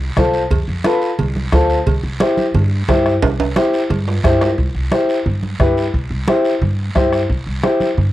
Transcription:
Already playing: upright bass C2
0.17 upright bass C2, upright piano F4 A4 C5, bombo low, bombo rim, cowbell, high conga, low conga, short guiro
0.34 short guiro
0.51 upright bass F2, bombo low, cowbell, high conga, low conga, long guiro
0.68 upright bass F2
0.84 upright piano F4 A4 B4, bombo rim, cowbell, high conga, short guiro
1.02 short guiro
1.19 upright bass C2, cowbell, high conga, low conga, long guiro
1.36 high conga
1.53 upright bass D2, upright piano F4 A4 C5, bombo low, bombo rim, cowbell, high conga, short guiro
1.70 short guiro
1.86 upright bass C2, bombo low, cowbell, high conga, low conga, long guiro
2.03 upright bass C2
2.20 upright piano E4 G4 C5, bombo rim, cowbell, high conga, short guiro
2.37 high conga, short guiro
2.54 upright bass G2, cowbell, high conga, low conga, long guiro
2.88 upright bass G2, upright piano E4 G4 C5, bombo low, bombo rim, cowbell, high conga, low conga, low timbale, short guiro
3.06 bombo rim, short guiro
3.22 upright bass C2, bombo low, cowbell, high conga, high timbale, long guiro
3.39 upright bass C2, high timbale
3.56 upright piano E4 G4 C5, bombo rim, cowbell, high conga, short guiro
3.73 short guiro
3.90 upright bass G2, cowbell, high conga, low conga, long guiro
4.08 low timbale
4.24 upright bass G2, upright piano E4 G4 C5, bombo low, bombo rim, cowbell, high conga, short guiro
4.41 bombo rim, low timbale, short guiro
4.58 upright bass C2, bombo low, high conga, long guiro
4.75 upright bass C2
4.91 upright piano E4 G4 C5, bombo rim, high conga, short guiro
5.09 short guiro
5.26 upright bass G2, high conga, low conga, long guiro
5.43 high conga
5.60 upright bass G2, upright piano E4 G4 B4, bombo low, bombo rim, high conga, low conga, short guiro
5.77 short guiro
5.93 upright bass C2, bombo low, high conga, long guiro
6.10 upright bass C2
6.28 upright piano E4 G4 C5, bombo rim, high conga, short guiro
6.45 short guiro
6.61 upright bass G2, high conga, low conga, long guiro
6.95 upright bass G2, upright piano E4 G4 C5, bombo low, bombo rim, high conga, short guiro
7.13 bombo rim, short guiro
7.29 upright bass C2, bombo low, high conga, long guiro
7.47 upright bass C2
7.63 upright piano E4 G4 C5, bombo rim, high conga, short guiro
7.80 high conga, short guiro
7.97 upright bass G2, high conga, low conga, long guiro

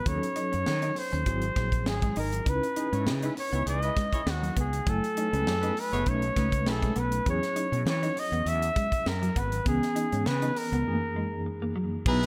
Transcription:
0.06 fretless electric bass D#2, tine electric piano F#3 C#4 D#4 A4, flugelhorn C#5, kick, closed hi-hat
0.22 muted clean electric guitar stroke, closed hi-hat
0.36 clean electric guitar D#4, closed hi-hat
0.52 fretless electric bass F#2, clean electric guitar C#4, closed hi-hat
0.66 fretless electric bass D#3, snare
0.82 clean electric guitar D#4, closed hi-hat
0.96 flugelhorn C5, muted clean electric guitar stroke, open hi-hat
1.12 fretless electric bass D#2, clean electric guitar C#4, closed hi-hat
1.26 fretless electric bass G#1, tine electric piano F#3 C4 E4 G#4, kick, closed hi-hat
1.41 closed hi-hat
1.56 fretless electric bass A#1, clean electric guitar C4, kick, snare, closed hi-hat
1.72 kick, closed hi-hat
1.86 fretless electric bass G#1, flugelhorn G#4, muted clean electric guitar stroke, snare
2.02 clean electric guitar G#3, kick, closed hi-hat
2.16 fretless electric bass G#1, clean electric guitar D#4, flugelhorn A#4, open hi-hat
2.32 closed hi-hat
2.45 fretless electric bass C#2, tine electric piano C#4 D#4 E4 B4, flugelhorn B4, kick, closed hi-hat
2.63 muted clean electric guitar stroke, closed hi-hat
2.76 horn section E3 D#4 G#4, clean electric guitar D#4, closed hi-hat
2.92 fretless electric bass G#2, horn section G#3 E4 C#5, clean electric guitar C#4, closed hi-hat
3.06 fretless electric bass C#3, horn section E3 D#4 G#4, snare
3.22 horn section G#3 E4 B4, clean electric guitar D#4, closed hi-hat
3.37 flugelhorn C#5, muted clean electric guitar stroke, open hi-hat
3.52 fretless electric bass C#2, horn section G#3 E4 C#5, clean electric guitar B3, closed hi-hat
3.64 fretless electric bass C#2, horn section E3 D#4 G#4, closed hi-hat
3.69 flugelhorn D#5
3.82 horn section G#3 E4 B4, closed hi-hat
3.96 clean electric guitar G#3, kick, snare, closed hi-hat
4.12 horn section G#3 E4 C#5, kick, closed hi-hat
4.26 fretless electric bass D#2, flugelhorn F#4, muted clean electric guitar stroke, snare
4.42 clean electric guitar F#3, closed hi-hat
4.56 fretless electric bass C#2, clean electric guitar B3, kick, closed hi-hat
4.60 flugelhorn G#4
4.73 closed hi-hat
4.86 fretless electric bass F#1, tine electric piano F#3 A3 E4 G#5, kick, closed hi-hat
4.90 flugelhorn A4
5.03 muted clean electric guitar stroke, closed hi-hat
5.16 horn section E3 C#4 A4, clean electric guitar D#4, closed hi-hat
5.31 fretless electric bass C#2, horn section B3 G#4 B4, clean electric guitar C#4, closed hi-hat
5.44 fretless electric bass F#2, horn section E3 C#4 G#4, snare
5.60 horn section B3 G#4 B4, clean electric guitar D#4, closed hi-hat
5.77 flugelhorn B4, muted clean electric guitar stroke, open hi-hat
5.91 fretless electric bass F#1, horn section A3 G#4 C#5, clean electric guitar B3, closed hi-hat
6.05 fretless electric bass B1, tine electric piano A3 C#4 D#4 B4, kick, closed hi-hat
6.10 flugelhorn C#5
6.22 closed hi-hat
6.35 fretless electric bass C#2, horn section F#3 D#4 B4, clean electric guitar A3, kick, snare, closed hi-hat
6.52 kick, closed hi-hat
6.66 fretless electric bass B1, horn section A3 E4 G#4, flugelhorn A4, muted clean electric guitar stroke, snare
6.82 clean electric guitar G#3, kick, closed hi-hat
6.95 fretless electric bass B1, clean electric guitar B3, flugelhorn B4, closed hi-hat
7.12 closed hi-hat
7.26 fretless electric bass E2, tine electric piano F#3 C#4 E4 G#4, kick, closed hi-hat
7.30 flugelhorn C#5
7.42 muted clean electric guitar stroke, snare, closed hi-hat
7.56 clean electric guitar D#4, closed hi-hat
7.72 fretless electric bass B2, clean electric guitar C#4, closed hi-hat
7.85 fretless electric bass E3, flugelhorn C#5, snare
8.03 clean electric guitar D#4, closed hi-hat
8.16 flugelhorn D#5, muted clean electric guitar stroke, open hi-hat
8.32 fretless electric bass E2, clean electric guitar B3, closed hi-hat
8.46 fretless electric bass E2, flugelhorn E5, closed hi-hat
8.62 closed hi-hat
8.76 clean electric guitar G#3, kick, closed hi-hat
8.92 kick, closed hi-hat
9.06 fretless electric bass F#2, flugelhorn A#4, muted clean electric guitar stroke, snare
9.22 clean electric guitar F#3, closed hi-hat
9.36 fretless electric bass G#1, clean electric guitar B3, flugelhorn B4, kick, closed hi-hat
9.52 closed hi-hat
9.64 fretless electric bass C#2, tine electric piano E3 B3 C#4 G#4, flugelhorn G#4, kick, closed hi-hat
9.83 muted clean electric guitar stroke, snare, closed hi-hat
9.96 clean electric guitar D#4, closed hi-hat
10.12 fretless electric bass G#2, clean electric guitar C#4, closed hi-hat
10.26 fretless electric bass C#3, flugelhorn B4, snare
10.42 clean electric guitar D#4, closed hi-hat
10.56 flugelhorn A#4, muted clean electric guitar stroke, open hi-hat
10.72 fretless electric bass C#2, clean electric guitar B3, closed hi-hat
10.85 tine electric piano F#2 E3 A3 D#4 G#4
10.93 tine electric piano A#3
11.16 clean electric guitar G#3
11.46 muted clean electric guitar stroke
11.62 clean electric guitar A#3
11.76 clean electric guitar F#3
12.06 fretless electric bass B1, tine electric piano F#3 B3 D#4 A#5, horn section G#3 E4 G#4, flugelhorn B4, kick, crash
12.22 muted clean electric guitar stroke, snare, closed hi-hat

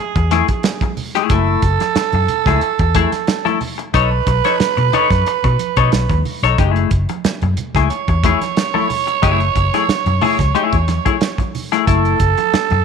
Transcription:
Already playing: tenor saxophone G#4
0.16 fingered electric bass E2, muted clean electric guitar stroke, kick, closed hi-hat, muted conga
0.31 clean electric guitar A3 E4 G#4, snare, closed hi-hat, high conga
0.48 muted clean electric guitar stroke, kick, closed hi-hat, high conga
0.63 muted clean electric guitar stroke, snare, closed hi-hat, muted conga
0.81 muted clean electric guitar stroke, kick, closed hi-hat, muted conga, high conga
0.97 open hi-hat, low conga
1.15 clean electric guitar A3 E4 G#4, snare, closed hi-hat
1.30 fingered electric bass F#1, clean electric guitar A3 E4, tenor saxophone A4, kick, closed hi-hat
1.47 muted conga
1.62 fingered electric bass F#1, kick, closed hi-hat
1.80 muted clean electric guitar stroke, snare, closed hi-hat, high conga
1.95 muted fingered electric bass stroke, muted clean electric guitar stroke, snare, closed hi-hat
2.12 fingered electric bass F#2, muted clean electric guitar stroke, closed hi-hat, muted conga, low conga
2.28 closed hi-hat, low conga
2.45 fingered electric bass C#2, clean electric guitar A3 E4 G#4, kick, snare, closed hi-hat, high conga
2.61 muted clean electric guitar stroke, closed hi-hat, muted conga
2.79 fingered electric bass E2, muted clean electric guitar stroke, kick, closed hi-hat
2.95 clean electric guitar A3 E4 G#4, kick, closed hi-hat, high conga
3.12 muted clean electric guitar stroke, snare, closed hi-hat, high conga
3.27 muted clean electric guitar stroke, snare, closed hi-hat, muted conga
3.45 clean electric guitar A3 E4 A4, closed hi-hat, muted conga, high conga
3.61 muted clean electric guitar stroke, open hi-hat, low conga
3.78 muted clean electric guitar stroke, closed hi-hat
3.94 fingered electric bass B1, clean electric guitar D#4 A4 C#5, tenor saxophone B4, kick, closed hi-hat
4.11 muted clean electric guitar stroke, muted conga
4.27 fingered electric bass B1, muted clean electric guitar stroke, kick, closed hi-hat
4.44 clean electric guitar D#4 A4 C#5, snare, closed hi-hat, high conga
4.60 muted fingered electric bass stroke, snare, closed hi-hat
4.77 fingered electric bass B2, muted clean electric guitar stroke, closed hi-hat, low conga
4.93 clean electric guitar D#4 A4 C#5, closed hi-hat, low conga
5.10 fingered electric bass F#2, muted clean electric guitar stroke, kick, snare, closed hi-hat, high conga
5.26 muted clean electric guitar stroke, closed hi-hat
5.44 fingered electric bass B2, muted clean electric guitar stroke, kick, closed hi-hat, muted conga
5.59 closed hi-hat, high conga
5.76 fingered electric bass B2, clean electric guitar D#4 A4 C#5, kick, closed hi-hat, high conga
5.92 fingered electric bass B1, muted clean electric guitar stroke, snare, closed hi-hat, muted conga
6.09 fingered electric bass D#2, muted clean electric guitar stroke, kick, closed hi-hat, high conga
6.25 open hi-hat, low conga
6.43 fingered electric bass B1, clean electric guitar D#4 A4 C#5, snare, closed hi-hat
6.58 fingered electric bass F#1, clean electric guitar G#3 D#4 G4, kick, closed hi-hat, muted conga
6.71 clean electric guitar A3 E4 G#4
6.76 closed hi-hat, muted conga
6.91 fingered electric bass F#1, kick, closed hi-hat
7.09 muted clean electric guitar stroke, closed hi-hat, high conga
7.25 muted fingered electric bass stroke, muted clean electric guitar stroke, snare, closed hi-hat
7.42 fingered electric bass F#2, muted clean electric guitar stroke, closed hi-hat, muted conga, low conga
7.57 closed hi-hat, low conga
7.74 fingered electric bass C#2, clean electric guitar A3 E4 G#4, kick, snare, closed hi-hat, high conga
7.90 tenor saxophone C#5, muted fingered electric bass stroke, muted clean electric guitar stroke, closed hi-hat
8.08 fingered electric bass E2, muted clean electric guitar stroke, kick, closed hi-hat, muted conga
8.24 clean electric guitar A3 E4 G#4, kick, closed hi-hat, high conga
8.41 muted clean electric guitar stroke, snare, closed hi-hat, high conga
8.57 muted clean electric guitar stroke, snare, closed hi-hat, muted conga
8.74 clean electric guitar A3 E4 A4, muted conga, high conga
8.89 muted clean electric guitar stroke, open hi-hat, low conga
9.07 muted clean electric guitar stroke, closed hi-hat
9.22 fingered electric bass F#1, clean electric guitar A3 E4 G#4, kick, closed hi-hat
9.40 muted clean electric guitar stroke, closed hi-hat
9.55 fingered electric bass F#1, muted clean electric guitar stroke, kick, closed hi-hat
9.74 clean electric guitar A3 E4 G#4, snare, closed hi-hat, high conga
9.88 muted fingered electric bass stroke, snare, closed hi-hat
10.06 fingered electric bass F#2, muted clean electric guitar stroke, closed hi-hat, muted conga, low conga
10.21 clean electric guitar A3 E4 G#4, open hi-hat, low conga
10.39 fingered electric bass C#2, muted clean electric guitar stroke, kick, snare, closed hi-hat, high conga
10.55 clean electric guitar A3 E4 G#4, muted fingered electric bass stroke, closed hi-hat
10.72 fingered electric bass E2, kick, closed hi-hat
10.88 muted clean electric guitar stroke, snare, closed hi-hat, high conga
11.05 clean electric guitar A3 E4 G#4, kick, closed hi-hat, high conga
11.21 muted clean electric guitar stroke, snare, closed hi-hat
11.38 muted clean electric guitar stroke, kick, closed hi-hat, high conga
11.55 open hi-hat, low conga
11.72 clean electric guitar A3 E4 G#4, snare, closed hi-hat
11.87 fingered electric bass F#1, clean electric guitar A3 E4, tenor saxophone A4, kick, closed hi-hat
12.05 closed hi-hat, muted conga
12.20 fingered electric bass F#1, kick, closed hi-hat
12.38 muted clean electric guitar stroke, closed hi-hat, high conga
12.53 muted fingered electric bass stroke, muted clean electric guitar stroke, snare, closed hi-hat
12.70 fingered electric bass F#2, muted clean electric guitar stroke, closed hi-hat, muted conga, low conga

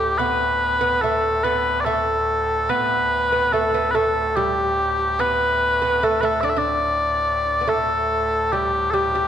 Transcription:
Already playing: pipe organ D2 A2, bagpipes G4
0.18 lute B3, bagpipes B4
0.81 lute B3
1.01 lute A3, bagpipes A4
1.44 lute B3, bagpipes B4
1.80 bagpipes D5
1.85 lute A3, bagpipes A4
2.69 pipe organ D2 A2, lute B3, bagpipes B4
3.32 lute B3
3.53 lute A3, bagpipes A4
3.74 lute B3
3.91 lute A3, bagpipes B4
3.95 bagpipes A4
4.36 lute G3, bagpipes G4
5.19 lute B3, bagpipes B4
5.82 lute B3
6.03 lute A3, bagpipes A4
6.21 lute A3, bagpipes B4
6.25 bagpipes A4
6.41 lute D4, bagpipes D5 E5
6.49 bagpipes E5
6.56 lute D4, bagpipes D5
7.61 lute B3
7.67 pipe organ D2 A2, lute A3, bagpipes A4
8.52 lute G3, bagpipes G4
8.91 lute G3, bagpipes G4 A4
9.15 lute G3

